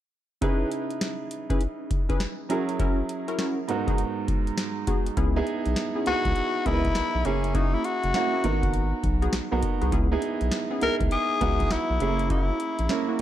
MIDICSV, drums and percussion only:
0, 0, Header, 1, 2, 480
1, 0, Start_track
1, 0, Tempo, 594059
1, 339, Time_signature, 4, 2, 24, 8
1, 10677, End_track
2, 0, Start_track
2, 0, Title_t, "Drums"
2, 338, Note_on_c, 9, 42, 71
2, 339, Note_on_c, 9, 36, 109
2, 419, Note_off_c, 9, 42, 0
2, 420, Note_off_c, 9, 36, 0
2, 578, Note_on_c, 9, 42, 66
2, 659, Note_off_c, 9, 42, 0
2, 731, Note_on_c, 9, 42, 51
2, 812, Note_off_c, 9, 42, 0
2, 818, Note_on_c, 9, 38, 98
2, 819, Note_on_c, 9, 42, 73
2, 899, Note_off_c, 9, 38, 0
2, 900, Note_off_c, 9, 42, 0
2, 1058, Note_on_c, 9, 42, 68
2, 1139, Note_off_c, 9, 42, 0
2, 1212, Note_on_c, 9, 36, 87
2, 1214, Note_on_c, 9, 42, 51
2, 1293, Note_off_c, 9, 36, 0
2, 1295, Note_off_c, 9, 42, 0
2, 1298, Note_on_c, 9, 42, 65
2, 1379, Note_off_c, 9, 42, 0
2, 1541, Note_on_c, 9, 36, 86
2, 1541, Note_on_c, 9, 42, 66
2, 1621, Note_off_c, 9, 42, 0
2, 1622, Note_off_c, 9, 36, 0
2, 1694, Note_on_c, 9, 42, 57
2, 1695, Note_on_c, 9, 36, 87
2, 1774, Note_off_c, 9, 42, 0
2, 1776, Note_off_c, 9, 36, 0
2, 1778, Note_on_c, 9, 38, 99
2, 1782, Note_on_c, 9, 42, 76
2, 1859, Note_off_c, 9, 38, 0
2, 1863, Note_off_c, 9, 42, 0
2, 2020, Note_on_c, 9, 42, 85
2, 2100, Note_off_c, 9, 42, 0
2, 2172, Note_on_c, 9, 42, 57
2, 2253, Note_off_c, 9, 42, 0
2, 2259, Note_on_c, 9, 36, 113
2, 2259, Note_on_c, 9, 42, 71
2, 2339, Note_off_c, 9, 36, 0
2, 2340, Note_off_c, 9, 42, 0
2, 2498, Note_on_c, 9, 42, 62
2, 2579, Note_off_c, 9, 42, 0
2, 2651, Note_on_c, 9, 42, 51
2, 2732, Note_off_c, 9, 42, 0
2, 2736, Note_on_c, 9, 38, 96
2, 2738, Note_on_c, 9, 42, 69
2, 2817, Note_off_c, 9, 38, 0
2, 2818, Note_off_c, 9, 42, 0
2, 2978, Note_on_c, 9, 42, 66
2, 3059, Note_off_c, 9, 42, 0
2, 3132, Note_on_c, 9, 36, 88
2, 3133, Note_on_c, 9, 42, 51
2, 3212, Note_off_c, 9, 36, 0
2, 3214, Note_off_c, 9, 42, 0
2, 3217, Note_on_c, 9, 42, 69
2, 3298, Note_off_c, 9, 42, 0
2, 3460, Note_on_c, 9, 42, 66
2, 3461, Note_on_c, 9, 36, 87
2, 3541, Note_off_c, 9, 42, 0
2, 3542, Note_off_c, 9, 36, 0
2, 3614, Note_on_c, 9, 42, 58
2, 3695, Note_off_c, 9, 42, 0
2, 3697, Note_on_c, 9, 38, 96
2, 3701, Note_on_c, 9, 42, 77
2, 3778, Note_off_c, 9, 38, 0
2, 3781, Note_off_c, 9, 42, 0
2, 3937, Note_on_c, 9, 42, 85
2, 3938, Note_on_c, 9, 36, 84
2, 4018, Note_off_c, 9, 42, 0
2, 4019, Note_off_c, 9, 36, 0
2, 4092, Note_on_c, 9, 42, 56
2, 4173, Note_off_c, 9, 42, 0
2, 4178, Note_on_c, 9, 36, 113
2, 4178, Note_on_c, 9, 42, 72
2, 4258, Note_off_c, 9, 42, 0
2, 4259, Note_off_c, 9, 36, 0
2, 4418, Note_on_c, 9, 42, 62
2, 4498, Note_off_c, 9, 42, 0
2, 4570, Note_on_c, 9, 42, 54
2, 4651, Note_off_c, 9, 42, 0
2, 4656, Note_on_c, 9, 38, 100
2, 4657, Note_on_c, 9, 42, 75
2, 4737, Note_off_c, 9, 38, 0
2, 4738, Note_off_c, 9, 42, 0
2, 4896, Note_on_c, 9, 42, 61
2, 4977, Note_off_c, 9, 42, 0
2, 5051, Note_on_c, 9, 36, 90
2, 5052, Note_on_c, 9, 42, 49
2, 5132, Note_off_c, 9, 36, 0
2, 5133, Note_off_c, 9, 42, 0
2, 5136, Note_on_c, 9, 42, 69
2, 5216, Note_off_c, 9, 42, 0
2, 5380, Note_on_c, 9, 36, 86
2, 5380, Note_on_c, 9, 42, 64
2, 5461, Note_off_c, 9, 36, 0
2, 5461, Note_off_c, 9, 42, 0
2, 5532, Note_on_c, 9, 42, 60
2, 5534, Note_on_c, 9, 36, 92
2, 5613, Note_off_c, 9, 42, 0
2, 5615, Note_off_c, 9, 36, 0
2, 5616, Note_on_c, 9, 38, 108
2, 5619, Note_on_c, 9, 42, 82
2, 5696, Note_off_c, 9, 38, 0
2, 5700, Note_off_c, 9, 42, 0
2, 5857, Note_on_c, 9, 42, 80
2, 5938, Note_off_c, 9, 42, 0
2, 6012, Note_on_c, 9, 42, 61
2, 6093, Note_off_c, 9, 42, 0
2, 6098, Note_on_c, 9, 36, 106
2, 6098, Note_on_c, 9, 42, 77
2, 6179, Note_off_c, 9, 36, 0
2, 6179, Note_off_c, 9, 42, 0
2, 6338, Note_on_c, 9, 42, 65
2, 6419, Note_off_c, 9, 42, 0
2, 6492, Note_on_c, 9, 42, 51
2, 6573, Note_off_c, 9, 42, 0
2, 6578, Note_on_c, 9, 38, 96
2, 6579, Note_on_c, 9, 42, 76
2, 6659, Note_off_c, 9, 38, 0
2, 6660, Note_off_c, 9, 42, 0
2, 6818, Note_on_c, 9, 42, 65
2, 6899, Note_off_c, 9, 42, 0
2, 6971, Note_on_c, 9, 36, 96
2, 6974, Note_on_c, 9, 42, 47
2, 7052, Note_off_c, 9, 36, 0
2, 7055, Note_off_c, 9, 42, 0
2, 7058, Note_on_c, 9, 42, 69
2, 7139, Note_off_c, 9, 42, 0
2, 7300, Note_on_c, 9, 36, 90
2, 7301, Note_on_c, 9, 42, 65
2, 7381, Note_off_c, 9, 36, 0
2, 7382, Note_off_c, 9, 42, 0
2, 7453, Note_on_c, 9, 42, 58
2, 7534, Note_off_c, 9, 42, 0
2, 7536, Note_on_c, 9, 38, 101
2, 7540, Note_on_c, 9, 42, 74
2, 7617, Note_off_c, 9, 38, 0
2, 7621, Note_off_c, 9, 42, 0
2, 7777, Note_on_c, 9, 42, 86
2, 7778, Note_on_c, 9, 36, 76
2, 7858, Note_off_c, 9, 42, 0
2, 7859, Note_off_c, 9, 36, 0
2, 7931, Note_on_c, 9, 42, 58
2, 8012, Note_off_c, 9, 42, 0
2, 8018, Note_on_c, 9, 36, 112
2, 8018, Note_on_c, 9, 42, 71
2, 8098, Note_off_c, 9, 42, 0
2, 8099, Note_off_c, 9, 36, 0
2, 8257, Note_on_c, 9, 42, 70
2, 8338, Note_off_c, 9, 42, 0
2, 8410, Note_on_c, 9, 42, 53
2, 8491, Note_off_c, 9, 42, 0
2, 8496, Note_on_c, 9, 38, 104
2, 8498, Note_on_c, 9, 42, 77
2, 8577, Note_off_c, 9, 38, 0
2, 8578, Note_off_c, 9, 42, 0
2, 8738, Note_on_c, 9, 42, 64
2, 8819, Note_off_c, 9, 42, 0
2, 8891, Note_on_c, 9, 36, 88
2, 8892, Note_on_c, 9, 42, 50
2, 8972, Note_off_c, 9, 36, 0
2, 8973, Note_off_c, 9, 42, 0
2, 8977, Note_on_c, 9, 42, 69
2, 9058, Note_off_c, 9, 42, 0
2, 9221, Note_on_c, 9, 36, 93
2, 9221, Note_on_c, 9, 42, 63
2, 9301, Note_off_c, 9, 42, 0
2, 9302, Note_off_c, 9, 36, 0
2, 9374, Note_on_c, 9, 42, 62
2, 9375, Note_on_c, 9, 36, 91
2, 9455, Note_off_c, 9, 36, 0
2, 9455, Note_off_c, 9, 42, 0
2, 9458, Note_on_c, 9, 38, 107
2, 9462, Note_on_c, 9, 42, 74
2, 9539, Note_off_c, 9, 38, 0
2, 9542, Note_off_c, 9, 42, 0
2, 9699, Note_on_c, 9, 42, 75
2, 9780, Note_off_c, 9, 42, 0
2, 9852, Note_on_c, 9, 42, 55
2, 9933, Note_off_c, 9, 42, 0
2, 9939, Note_on_c, 9, 36, 117
2, 9939, Note_on_c, 9, 42, 77
2, 10020, Note_off_c, 9, 36, 0
2, 10020, Note_off_c, 9, 42, 0
2, 10179, Note_on_c, 9, 42, 67
2, 10260, Note_off_c, 9, 42, 0
2, 10332, Note_on_c, 9, 42, 54
2, 10413, Note_off_c, 9, 42, 0
2, 10417, Note_on_c, 9, 38, 99
2, 10419, Note_on_c, 9, 42, 74
2, 10498, Note_off_c, 9, 38, 0
2, 10499, Note_off_c, 9, 42, 0
2, 10677, End_track
0, 0, End_of_file